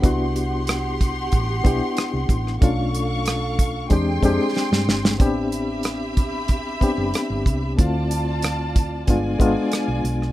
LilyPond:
<<
  \new Staff \with { instrumentName = "String section" } { \time 4/4 \key a \dorian \tempo 4 = 93 <g' fis'' c'''>1 | <a' f'' cis'''>2 <gis' g'' bis''>2 | <g' e'' b''>1 | <f' d'' a''>2 <f' d'' aes''>2 | }
  \new Staff \with { instrumentName = "Reed electric piano" } { \time 4/4 \key a \dorian <b d' e' fis'>4. r4 <b d' e' g'>4 r8 | <a cis' d' f'>4. r8 <gis bis d' g'>8 <gis bis d' g'>4 r8 | <b c' d' g'>4. r4 <b c' d' g'>4 r8 | <a c' e' f'>4. r8 <aes b d' f'>8 <aes b d' f'>4 r8 | }
  \new Staff \with { instrumentName = "Fingered electric bass" } { \clef bass \time 4/4 \key a \dorian c,2 a,,8 b,,16 r8 c,16 a,,8 | b,,2 e,8 f,16 r8 g,16 g,,8 | a,,2~ a,,8 r16 fis,,16 r16 g,,16 c,8 | d,2 g,,8 aes,,16 r8 b,,16 b,,8 | }
  \new DrumStaff \with { instrumentName = "Drums" } \drummode { \time 4/4 <hh bd>8 hh8 <hh ss>8 <hh bd>8 <hh bd>8 <hh bd>8 <hh ss>8 <hh bd>16 ss16 | <hh bd>8 hh8 <hh ss>8 <hh bd>8 <hh bd>8 <hh bd>8 sn16 sn16 sn16 sn16 | <hh bd>8 hh8 <hh ss>8 <hh bd>8 <hh bd>8 <hh bd>8 <hh ss>8 <hh bd>8 | <hh bd>8 hh8 <hh ss>8 <hh bd>8 <hh bd>8 <hh bd>8 <hh ss>8 hh16 ss16 | }
>>